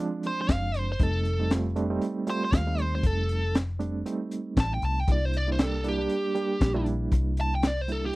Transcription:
Already playing: reed electric piano F3 G#3 C4 D4
0.23 overdriven electric guitar C5, closed hi-hat
0.41 overdriven electric guitar C5
0.48 fingered electric bass F#1, overdriven electric guitar F5, kick, snare, closed hi-hat
0.74 overdriven electric guitar C5, closed hi-hat
0.92 overdriven electric guitar C5
0.99 fingered electric bass F1, reed electric piano G3 A3 C4 D#4, overdriven electric guitar A4, kick, closed hi-hat
1.25 closed hi-hat
1.39 reed electric piano G3 A3 C4 D#4
1.50 reed electric piano G3 A3 C4 F4, snare, closed hi-hat
1.76 reed electric piano G3 A3 C4 D4, closed hi-hat
1.90 reed electric piano G3 A3 C4 D#4
2.01 closed hi-hat
2.27 reed electric piano G3 A3 C4 F4, overdriven electric guitar C5, closed hi-hat
2.45 overdriven electric guitar C5
2.52 fingered electric bass D#2, overdriven electric guitar F5, kick, snare, closed hi-hat
2.67 reed electric piano G3 A3 C4 D#4
2.78 overdriven electric guitar C5, closed hi-hat
2.95 overdriven electric guitar C5
3.03 fingered electric bass F1, overdriven electric guitar A4, kick, closed hi-hat
3.29 closed hi-hat
3.55 snare, closed hi-hat
3.79 reed electric piano G3 A3 C4 D4, closed hi-hat
4.06 reed electric piano G3 A3 C4 D#4, closed hi-hat
4.31 closed hi-hat
4.57 fingered electric bass A1, overdriven electric guitar A5, kick, snare, closed hi-hat
4.74 overdriven electric guitar G5
4.82 fingered electric bass C2, overdriven electric guitar A5, closed hi-hat
5.00 overdriven electric guitar G5
5.08 fingered electric bass C2, reed electric piano G3 A#3 D4 E4, kick, closed hi-hat
5.12 overdriven electric guitar D5
5.25 overdriven electric guitar C5
5.33 overdriven electric guitar D5, closed hi-hat
5.47 reed electric piano G3 A#3 D4 E4
5.52 overdriven electric guitar C5
5.59 reed electric piano G3 A#3 D4 G4, snare, closed hi-hat
5.63 overdriven electric guitar A4
5.84 reed electric piano G3 A#3 D4 E4, closed hi-hat
5.89 overdriven electric guitar G4
5.98 reed electric piano G3 A#3 D4 G4
6.09 closed hi-hat
6.35 reed electric piano G3 A#3 D4 G4, closed hi-hat
6.61 fingered electric bass A#1, kick, snare, closed hi-hat
6.74 reed electric piano G3 A#3 D4 E4
6.86 closed hi-hat
7.12 fingered electric bass C2, kick, closed hi-hat
7.37 overdriven electric guitar A5, closed hi-hat
7.55 overdriven electric guitar G5
7.63 snare, closed hi-hat
7.67 overdriven electric guitar D5
7.81 overdriven electric guitar C5
7.88 reed electric piano G3 A#3 D4 E4, overdriven electric guitar A4, closed hi-hat
8.06 overdriven electric guitar G4

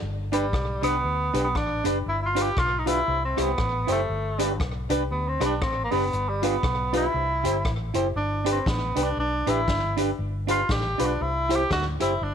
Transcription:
0.02 fingered electric bass G1
0.32 tenor saxophone G3, upright piano D4 G4 B4, clean electric guitar D4 G4 B4, closed hi-hat
0.53 fingered electric bass B1, kick, cross-stick
0.82 fingered electric bass C2, tenor saxophone B3, clean electric guitar D4 G4 B4, upright piano D4 G4 B4, closed hi-hat
1.04 fingered electric bass D2, upright piano G4 B4
1.33 fingered electric bass B1, upright piano D4 G4 B4, clean electric guitar D4 G4 B4, closed hi-hat
1.44 tenor saxophone B3
1.55 fingered electric bass A1, tenor saxophone D4, kick, cross-stick
1.84 fingered electric bass F#1, clean electric guitar D4 G4 B4, upright piano D4 G4 B4, closed hi-hat
2.06 fingered electric bass G1, tenor saxophone E4
2.22 tenor saxophone E4 F4
2.35 clean electric guitar D4 F4 B4, upright piano F4 G4 B4, closed hi-hat
2.42 tenor saxophone G4
2.57 fingered electric bass B1, tenor saxophone F4, kick, cross-stick
2.79 tenor saxophone D#4
2.86 clean electric guitar D4 F4 B4, tenor saxophone E4, upright piano F4 G4 B4, closed hi-hat
3.08 fingered electric bass C2, upright piano G4 C5
3.25 tenor saxophone C4
3.37 fingered electric bass C2, upright piano E4 G4 C5, clean electric guitar E4 G4 C5, cross-stick, closed hi-hat
3.41 tenor saxophone B3
3.58 fingered electric bass A1, kick, cross-stick
3.87 fingered electric bass F#1, upright piano E4 G4 C5, clean electric guitar E4 G4 C5, closed hi-hat
3.92 tenor saxophone A3
4.09 fingered electric bass G1
4.38 upright piano D4 G4 B4, clean electric guitar D4 G4 B4, closed hi-hat
4.60 fingered electric bass B1, kick, cross-stick
4.89 fingered electric bass C2, upright piano D4 G4 B4, clean electric guitar D4 G4 B4, closed hi-hat
5.11 fingered electric bass D2, tenor saxophone B3, upright piano G4 B4
5.28 tenor saxophone C4
5.40 fingered electric bass B1, upright piano D4 G4 B4, clean electric guitar D4 G4 B4, cross-stick, closed hi-hat
5.45 tenor saxophone D4
5.62 fingered electric bass A1, tenor saxophone C4, kick, cross-stick
5.84 tenor saxophone A#3
5.91 fingered electric bass F#1, tenor saxophone B3, upright piano D4 G4 B4, clean electric guitar D4 G4 B4, open hi-hat
6.13 fingered electric bass G1, hi-hat pedal
6.29 tenor saxophone G3
6.42 clean electric guitar D4 F4 B4, upright piano F4 G4 B4, closed hi-hat
6.47 tenor saxophone B3
6.63 fingered electric bass B1, kick, cross-stick
6.93 clean electric guitar D4 F4 B4, upright piano F4 G4 B4, closed hi-hat
6.97 tenor saxophone E4
7.14 fingered electric bass C2, upright piano G4 C5
7.44 fingered electric bass G1, clean electric guitar E4 G4 C5, upright piano E4 G4 C5, closed hi-hat
7.65 fingered electric bass A1, kick, cross-stick
7.94 fingered electric bass F#1, clean electric guitar E4 G4 C5, upright piano E4 G4 C5, closed hi-hat
8.15 fingered electric bass G1, tenor saxophone D4
8.45 clean electric guitar D4 G4 B4, upright piano D4 G4 B4, closed hi-hat
8.52 tenor saxophone C4
8.66 fingered electric bass A1, tenor saxophone B3, kick, snare
8.96 fingered electric bass C2, clean electric guitar D4 G4 B4, upright piano D4 G4 B4, closed hi-hat
9.03 tenor saxophone D4
9.17 fingered electric bass B1, tenor saxophone D4, upright piano G4 B4
9.47 fingered electric bass A1, clean electric guitar D4 G4 B4, upright piano D4 G4 B4, tenor saxophone E4, closed hi-hat
9.68 fingered electric bass G1, kick, snare
9.97 clean electric guitar D4 G4 B4, upright piano D4 G4 B4, closed hi-hat
10.19 fingered electric bass G1
10.47 clean electric guitar D4 F4 B4, upright piano F4 G4 B4, tenor saxophone F4, closed hi-hat
10.69 fingered electric bass A1, tenor saxophone G4, kick, snare
10.98 fingered electric bass B1, clean electric guitar D4 F4 B4, upright piano F4 G4 B4, closed hi-hat
11.05 tenor saxophone D4
11.20 fingered electric bass C2, tenor saxophone E4, upright piano G4 C5
11.49 clean electric guitar E4 G4 C5, upright piano E4 G4 C5, closed hi-hat
11.56 tenor saxophone G4
11.71 fingered electric bass D2, tenor saxophone F#4, kick, snare
12.00 fingered electric bass F#1, clean electric guitar E4 G4 C5, upright piano E4 G4 C5, tenor saxophone E4, closed hi-hat
12.21 fingered electric bass G1, tenor saxophone D4

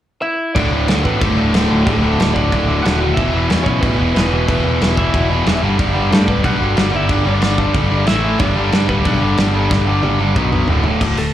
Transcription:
0.22 lead electric guitar E4 E5
0.55 picked electric bass D1, overdriven electric guitar D2 A2 D3, lead electric guitar D4 D5, kick, crash
0.71 picked electric bass D1, overdriven electric guitar D2 A2 D3
0.87 picked electric bass D2, overdriven electric guitar D2 A2 D3, snare, crash
1.04 picked electric bass A1, overdriven electric guitar D2 A2 D3, lead electric guitar B3 B4, kick
1.20 picked electric bass G1, overdriven electric guitar D2 A2 D3, lead electric guitar A3 A4, kick, crash
1.37 picked electric bass D1, overdriven electric guitar D2 A2 D3
1.53 picked electric bass D1, overdriven electric guitar D2 A2 D3, lead electric guitar A3 A4, snare, crash
1.70 picked electric bass D1, overdriven electric guitar D2 A2 D3
1.85 picked electric bass D1, overdriven electric guitar D2 A2 D3, lead electric guitar A3 A4, kick, crash
2.02 picked electric bass D1, overdriven electric guitar D2 A2 D3
2.18 picked electric bass D1, overdriven electric guitar D2 A2 D3, snare, crash
2.34 picked electric bass D1, overdriven electric guitar D2 A2 D3, lead electric guitar D4 D5, kick
2.52 picked electric bass D1, overdriven electric guitar D2 A2 D3, kick, crash
2.68 overdriven electric guitar D2 A2 D3
2.83 picked electric bass D#1, overdriven electric guitar D2 A2 D3, lead electric guitar F#4 F#5, snare, crash
3.01 overdriven electric guitar D2 A2 D3
3.14 picked electric bass E1, overdriven electric guitar E2, lead electric guitar E4 E5, kick, crash
3.18 overdriven electric guitar B2 E3
3.33 picked electric bass E1, overdriven electric guitar E2 B2 E3
3.49 overdriven electric guitar E2 B2 E3, picked electric bass E2, snare, crash
3.64 picked electric bass B1, overdriven electric guitar E2 B2 E3, lead electric guitar C#4 C#5, kick
3.81 picked electric bass A1, overdriven electric guitar E2 B2 E3, lead electric guitar B3 B4, kick, crash
3.98 picked electric bass E1, overdriven electric guitar E2 B2 E3
4.14 picked electric bass E1, overdriven electric guitar E2 B2 E3, lead electric guitar B3 B4, snare, crash
4.31 picked electric bass E1, overdriven electric guitar E2 B2 E3
4.47 picked electric bass E1, overdriven electric guitar E2 B2 E3, lead electric guitar B3 B4, kick, crash
4.64 picked electric bass E1, overdriven electric guitar E2 B2 E3
4.81 picked electric bass E1, overdriven electric guitar E2 B2 E3, snare, crash
4.97 picked electric bass E1, overdriven electric guitar E2 B2 E3, lead electric guitar E4 E5, kick
5.14 picked electric bass E1, overdriven electric guitar E2 B2 E3, kick, crash
5.30 overdriven electric guitar E2 B2 E3
5.46 picked electric bass E1, overdriven electric guitar E2 B2 E3, snare, crash
5.62 picked electric bass G1, overdriven electric guitar G2 D3 G3
5.78 picked electric bass G1, overdriven electric guitar G2 D3 G3, kick, crash
5.94 picked electric bass G1, overdriven electric guitar G2 D3 G3
6.11 overdriven electric guitar G2 D3 G3, picked electric bass G2, lead electric guitar A3 A4, snare, crash
6.27 picked electric bass D1, overdriven electric guitar G2 D3 G3, lead electric guitar B3 B4, kick
6.43 picked electric bass B1, overdriven electric guitar G2 D3 G3, lead electric guitar F#4 F#5, kick, crash
6.59 picked electric bass G1, overdriven electric guitar G2 D3 G3
6.76 picked electric bass G1, overdriven electric guitar G2 D3 G3, snare, crash
6.91 picked electric bass G1, overdriven electric guitar G2 D3 G3, lead electric guitar E4
6.96 lead electric guitar E5
7.08 picked electric bass G1, overdriven electric guitar G2 D3 G3, lead electric guitar D4 D5, kick, crash
7.25 picked electric bass G1, overdriven electric guitar G2 D3 G3, lead electric guitar D4 D5
7.41 picked electric bass G1, overdriven electric guitar G2 D3 G3, snare, crash
7.57 picked electric bass G1, overdriven electric guitar G2 D3 G3, kick
7.74 picked electric bass G1, overdriven electric guitar G2 D3 G3, kick, crash
7.90 overdriven electric guitar G2 D3 G3
8.05 picked electric bass A1, overdriven electric guitar A2 E3 A3, lead electric guitar E4 E5, snare, crash
8.23 overdriven electric guitar A2 E3 A3
8.39 picked electric bass G1, overdriven electric guitar G2 D3 G3, lead electric guitar D4 D5, kick, crash
8.56 picked electric bass G1, overdriven electric guitar G2 D3 G3
8.72 overdriven electric guitar G2 D3 G3, picked electric bass G2, snare, crash
8.88 picked electric bass D1, overdriven electric guitar G2 D3 G3, lead electric guitar B3 B4, kick
9.05 picked electric bass B1, overdriven electric guitar G2 D3 G3, lead electric guitar D4 D5, kick, crash
9.20 picked electric bass G1, overdriven electric guitar G2 D3 G3
9.37 picked electric bass G1, overdriven electric guitar G2 D3 G3, snare, crash
9.53 picked electric bass G1, overdriven electric guitar G2 D3 G3
9.69 picked electric bass G1, overdriven electric guitar G2 D3 G3, kick, snare
9.87 picked electric bass G1, overdriven electric guitar G2 D3 G3
10.02 picked electric bass G1, overdriven electric guitar G2 D3 G3, high tom
10.19 picked electric bass G1, overdriven electric guitar G2 D3 G3
10.36 picked electric bass B1, overdriven electric guitar B2 F#3 B3, kick, mid tom
10.52 overdriven electric guitar B2 F#3 B3, mid tom
10.68 picked electric bass D1, overdriven electric guitar D2 A2 D3, floor tom
10.84 overdriven electric guitar D2 A2 D3, floor tom
11.01 picked electric bass D1, overdriven electric guitar D2 A2 D3, kick, crash
11.17 picked electric bass D1, overdriven electric guitar D2 A2, lead electric guitar A3 A4, open hi-hat

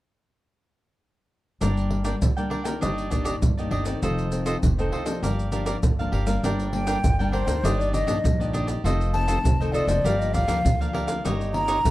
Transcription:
1.61 upright bass G1, nylon-string guitar G2 G3 A#3 D4, cavaquinho D4 A#4 D5 G5, pandeiro, maracas, surdo
1.77 pandeiro, maracas
1.90 pandeiro
2.04 nylon-string guitar G3 A#3 D4, cavaquinho D4 A#4 D5 G5, pandeiro, maracas
2.21 upright bass D2, nylon-string guitar D3, pandeiro, maracas, surdo
2.37 nylon-string guitar G3 A#3 D4, cavaquinho A#4 D5 G5, pandeiro, maracas
2.50 cavaquinho D4 A#4 D5 G5, pandeiro
2.64 nylon-string guitar D#3 A#3 D4, cavaquinho A#4 D5 G5, pandeiro, maracas
2.81 upright bass G1, nylon-string guitar G2, cavaquinho D4 G4 D5 D#5, pandeiro, maracas, surdo
2.98 pandeiro, maracas
3.10 nylon-string guitar D#3 A#3 D4, cavaquinho D4 G4 D5 D#5, pandeiro, maracas, surdo
3.24 cavaquinho D4 G4 D5 D#5, pandeiro, maracas
3.42 upright bass G1, nylon-string guitar G2, pandeiro, maracas, surdo
3.58 nylon-string guitar D#3 A#3 D4, cavaquinho G4 D5 D#5, pandeiro, maracas
3.71 upright bass G1, cavaquinho D4 G4 D5 D#5, pandeiro
3.85 nylon-string guitar D#3 A3 C4, cavaquinho G4 D5 D#5, pandeiro, maracas
4.02 upright bass F1, nylon-string guitar F2, cavaquinho F4 A4 C5 D#5, pandeiro, maracas, surdo
4.18 pandeiro, maracas
4.31 nylon-string guitar D#3 A3 C4, pandeiro, maracas
4.46 cavaquinho F4 A4 C5 D#5, pandeiro, maracas
4.63 upright bass F1, nylon-string guitar C3, pandeiro, maracas, surdo
4.78 nylon-string guitar D#3 A3 C4, cavaquinho A4 C5 D#5, pandeiro, maracas
4.92 cavaquinho F4 A4 C5 D#5, pandeiro
5.05 nylon-string guitar F3 A#3 D4, cavaquinho A4 C5 D#5, pandeiro, maracas
5.22 upright bass G1, nylon-string guitar G2, cavaquinho G4 A#4 D5 F5, pandeiro, maracas, surdo
5.39 pandeiro, maracas
5.52 nylon-string guitar F3 A#3 D4, cavaquinho G4 A#4 D5 F5, pandeiro, maracas
5.66 cavaquinho G4 A#4 D5 F5, pandeiro, maracas
5.82 upright bass G1, nylon-string guitar D3, pandeiro, maracas, surdo
5.99 nylon-string guitar F3 A#3 D4, cavaquinho A#4 D5 F5, pandeiro, maracas
6.12 upright bass G1, cavaquinho G4 A#4 D5 F5, pandeiro
6.26 nylon-string guitar G3 A#3 D4, cavaquinho A#4 D5 F5, pandeiro, maracas
6.43 upright bass G1, nylon-string guitar G2, cavaquinho D4 A#4 D5 G5, pandeiro, maracas, surdo
6.60 pandeiro, maracas
6.72 nylon-string guitar G3 A#3 D4, flute G5, pandeiro
6.87 cavaquinho D4 A#4 D5 G5, pandeiro, maracas
7.04 upright bass G1, nylon-string guitar D3, pandeiro, maracas, surdo
7.19 nylon-string guitar G3 A#3 D4, cavaquinho A#4 D5 G5, pandeiro, maracas
7.32 cavaquinho D4 A#4 D5 G5, flute C5, pandeiro
7.46 upright bass D2, nylon-string guitar D#3 A#3 D4, cavaquinho A#4 D5 G5, pandeiro, maracas
7.63 upright bass G1, nylon-string guitar G2, cavaquinho D4 G4 D5 D#5, pandeiro, maracas, surdo
7.80 flute D5, pandeiro, maracas
7.93 cavaquinho D4 G4 D5 D#5, flute D#5, pandeiro, maracas
8.07 upright bass A#1, nylon-string guitar D#3 A#3 D4, cavaquinho D4 G4 D5 D#5, pandeiro, maracas
8.24 upright bass A#1, nylon-string guitar G2, pandeiro, maracas, surdo
8.40 nylon-string guitar D#3 A#3 D4, cavaquinho G4 D5 D#5, pandeiro, maracas
8.53 cavaquinho D4 G4 D5 D#5, pandeiro, maracas
8.67 cavaquinho G4 D5 D#5, pandeiro, maracas
8.84 upright bass F1, nylon-string guitar F2 D#3 A3 C4, cavaquinho F4 A4 C5 D#5, pandeiro, maracas, surdo
9.01 pandeiro, maracas
9.13 nylon-string guitar D#3 A3 C4, flute A5, pandeiro
9.27 cavaquinho F4 A4 C5 D#5, pandeiro, maracas
9.44 upright bass F1, nylon-string guitar C3, pandeiro, maracas, surdo
9.60 nylon-string guitar D#3 A3 C4, cavaquinho A4 C5 D#5, pandeiro, maracas
9.72 cavaquinho F4 A4 C5 D#5, flute D5, pandeiro, maracas
9.87 upright bass F1, nylon-string guitar F3 A#3 D4, cavaquinho A4 C5 D#5, pandeiro, maracas
10.04 upright bass G1, nylon-string guitar G2, cavaquinho G4 A#4 D5 F5, pandeiro, maracas, surdo
10.19 flute D#5, pandeiro, maracas
10.33 cavaquinho G4 A#4 D5 F5, flute F5, pandeiro, maracas, surdo
10.48 upright bass D2, nylon-string guitar F3 A#3 D4, cavaquinho G4 A#4 D5 F5, pandeiro, maracas
10.65 upright bass D2, nylon-string guitar D3, pandeiro, maracas, surdo
10.80 nylon-string guitar F3 A#3 D4, cavaquinho A#4 D5 F5, pandeiro, maracas
10.93 cavaquinho G4 A#4 D5 F5, pandeiro
11.07 cavaquinho A#4 D5 F5, pandeiro, maracas
11.24 upright bass G1, nylon-string guitar G2 D#3 A#3 C#4, cavaquinho D#4 G4 C#5 D#5, pandeiro, maracas, surdo
11.41 pandeiro, maracas
11.53 nylon-string guitar D#3 A#3 C#4, flute A#5, pandeiro
11.68 cavaquinho D#4 G4 C#5 D#5, pandeiro, maracas
11.84 upright bass G1, nylon-string guitar G2, pandeiro, maracas, surdo

